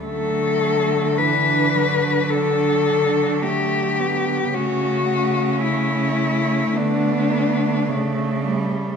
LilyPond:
<<
  \new Staff \with { instrumentName = "Cello" } { \time 4/4 \key d \major \tempo 4 = 53 a'4 b'4 a'4 g'4 | fis'4 e'4 d'4. r8 | }
  \new Staff \with { instrumentName = "Cello" } { \time 4/4 \key d \major a4 d'4 d'4 a8 b8 | cis'8 cis'4. b4 a4 | }
  \new Staff \with { instrumentName = "Cello" } { \clef bass \time 4/4 \key d \major fis4 e8 fis2~ fis8 | a2. a8 g8 | }
  \new Staff \with { instrumentName = "Cello" } { \clef bass \time 4/4 \key d \major d1 | cis2 d4 cis4 | }
>>